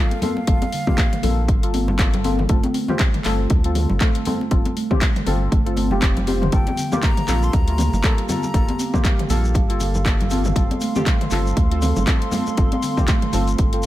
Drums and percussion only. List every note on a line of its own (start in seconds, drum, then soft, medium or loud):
0.11 closed hi-hat soft
0.11 muted conga soft
0.22 open hi-hat medium
0.22 high conga loud
0.22 low conga loud
0.37 muted conga medium
0.47 kick loud
0.47 closed hi-hat medium
0.62 closed hi-hat soft
0.62 muted conga medium
0.62 high conga loud
0.72 open hi-hat loud
0.87 kick medium
0.87 mid tom medium
0.87 muted conga soft
0.87 high conga loud
0.98 kick loud
0.98 clap loud
0.98 closed hi-hat medium
1.13 closed hi-hat soft
1.13 mid tom medium
1.23 open hi-hat loud
1.23 muted conga medium
1.23 low conga medium
1.48 kick loud
1.48 closed hi-hat medium
1.48 muted conga soft
1.63 closed hi-hat soft
1.74 open hi-hat loud
1.74 muted conga medium
1.74 high conga medium
1.88 low conga loud
1.99 kick loud
1.99 clap loud
1.99 closed hi-hat medium
2.14 closed hi-hat soft
2.14 muted conga soft
2.14 low conga loud
2.24 open hi-hat medium
2.24 high conga loud
2.39 mid tom medium
2.39 muted conga soft
2.39 low conga medium
2.49 kick loud
2.49 closed hi-hat medium
2.63 closed hi-hat soft
2.63 muted conga medium
2.63 high conga loud
2.74 open hi-hat loud
2.88 mid tom medium
2.88 muted conga soft
2.88 high conga loud
2.99 kick loud
2.99 clap loud
2.99 closed hi-hat medium
3.14 closed hi-hat soft
3.14 mid tom medium
3.25 clap medium
3.25 open hi-hat loud
3.25 muted conga medium
3.25 low conga medium
3.50 kick loud
3.50 closed hi-hat medium
3.50 muted conga soft
3.64 closed hi-hat soft
3.75 open hi-hat loud
3.75 mid tom medium
3.75 muted conga soft
3.75 high conga medium
3.89 low conga loud
4.01 kick loud
4.01 clap loud
4.01 closed hi-hat medium
4.15 closed hi-hat soft
4.15 muted conga soft
4.25 open hi-hat medium
4.25 high conga loud
4.25 low conga loud
4.41 muted conga soft
4.51 kick loud
4.51 closed hi-hat medium
4.65 closed hi-hat soft
4.65 muted conga soft
4.65 high conga loud
4.77 open hi-hat medium
4.91 kick medium
4.91 mid tom loud
4.91 muted conga soft
4.91 high conga loud
5.02 kick loud
5.02 clap loud
5.02 closed hi-hat medium
5.16 closed hi-hat soft
5.16 mid tom medium
5.26 open hi-hat medium
5.26 muted conga soft
5.26 high conga medium
5.26 low conga medium
5.52 kick loud
5.52 closed hi-hat medium
5.52 muted conga soft
5.67 closed hi-hat soft
5.77 open hi-hat medium
5.77 muted conga medium
5.77 high conga medium
5.91 low conga medium
6.02 kick loud
6.02 clap loud
6.02 closed hi-hat medium
6.17 closed hi-hat soft
6.17 muted conga soft
6.17 low conga loud
6.27 open hi-hat medium
6.27 high conga loud
6.42 mid tom medium
6.42 muted conga soft
6.42 low conga medium
6.52 kick loud
6.52 closed hi-hat medium
6.52 shekere soft
6.67 closed hi-hat soft
6.67 muted conga soft
6.67 high conga medium
6.77 open hi-hat medium
6.77 shekere medium
6.92 mid tom loud
6.92 muted conga soft
6.92 high conga loud
6.92 shekere medium
7.03 kick loud
7.03 clap loud
7.03 closed hi-hat medium
7.03 shekere soft
7.17 closed hi-hat soft
7.17 mid tom medium
7.28 clap medium
7.28 open hi-hat medium
7.28 muted conga soft
7.28 low conga medium
7.28 shekere loud
7.43 shekere medium
7.53 kick loud
7.53 closed hi-hat medium
7.53 muted conga soft
7.53 shekere soft
7.68 closed hi-hat soft
7.78 open hi-hat medium
7.78 mid tom medium
7.78 muted conga medium
7.78 high conga medium
7.78 shekere loud
7.93 low conga medium
7.93 shekere soft
8.04 kick loud
8.04 clap loud
8.04 closed hi-hat medium
8.04 shekere soft
8.18 closed hi-hat soft
8.18 muted conga soft
8.29 open hi-hat medium
8.29 high conga loud
8.29 low conga loud
8.29 shekere loud
8.43 muted conga medium
8.43 shekere medium
8.54 kick loud
8.54 closed hi-hat medium
8.54 shekere soft
8.69 closed hi-hat soft
8.69 muted conga soft
8.69 high conga medium
8.79 open hi-hat medium
8.79 shekere loud
8.94 kick medium
8.94 mid tom loud
8.94 muted conga soft
8.94 high conga loud
8.94 shekere medium
9.04 kick loud
9.04 clap loud
9.04 closed hi-hat medium
9.04 shekere soft
9.19 closed hi-hat soft
9.19 mid tom medium
9.30 open hi-hat medium
9.30 muted conga medium
9.30 low conga medium
9.30 shekere medium
9.44 shekere soft
9.54 kick loud
9.54 closed hi-hat medium
9.54 muted conga soft
9.54 shekere soft
9.70 closed hi-hat soft
9.80 open hi-hat medium
9.80 muted conga medium
9.80 high conga medium
9.80 shekere medium
9.95 low conga medium
9.95 shekere medium
10.05 kick loud
10.05 clap loud
10.05 closed hi-hat medium
10.05 shekere soft
10.20 closed hi-hat soft
10.20 muted conga soft
10.20 low conga loud
10.30 open hi-hat medium
10.30 high conga loud
10.30 shekere medium
10.45 mid tom medium
10.45 muted conga soft
10.45 low conga medium
10.45 shekere medium
10.56 kick loud
10.56 closed hi-hat medium
10.56 shekere soft
10.71 closed hi-hat soft
10.71 muted conga medium
10.71 high conga medium
10.81 open hi-hat medium
10.81 shekere medium
10.95 mid tom loud
10.95 muted conga soft
10.95 high conga loud
10.95 shekere medium
11.06 kick loud
11.06 clap loud
11.06 closed hi-hat medium
11.06 shekere soft
11.21 closed hi-hat soft
11.21 mid tom medium
11.31 clap medium
11.31 open hi-hat medium
11.31 muted conga soft
11.31 low conga medium
11.31 shekere medium
11.46 shekere soft
11.57 kick loud
11.57 closed hi-hat medium
11.57 muted conga soft
11.57 shekere soft
11.71 closed hi-hat soft
11.82 open hi-hat medium
11.82 mid tom medium
11.82 muted conga medium
11.82 high conga medium
11.82 shekere loud
11.96 low conga loud
11.96 shekere medium
12.07 kick loud
12.07 clap loud
12.07 closed hi-hat medium
12.07 shekere soft
12.22 closed hi-hat soft
12.22 muted conga soft
12.31 open hi-hat medium
12.31 high conga loud
12.31 low conga loud
12.31 shekere medium
12.47 muted conga medium
12.47 shekere medium
12.57 kick loud
12.57 closed hi-hat medium
12.57 shekere soft
12.72 closed hi-hat soft
12.72 muted conga medium
12.72 high conga loud
12.82 open hi-hat loud
12.82 shekere medium
12.97 kick medium
12.97 mid tom medium
12.97 muted conga soft
12.97 high conga loud
12.97 shekere soft
13.08 kick loud
13.08 clap loud
13.08 closed hi-hat medium
13.08 shekere soft
13.22 closed hi-hat soft
13.22 mid tom medium
13.33 open hi-hat medium
13.33 muted conga medium
13.33 high conga medium
13.33 low conga medium
13.33 shekere medium
13.47 closed hi-hat soft
13.47 shekere medium
13.58 kick loud
13.58 closed hi-hat medium
13.58 muted conga soft
13.58 shekere soft
13.73 closed hi-hat soft
13.83 shekere medium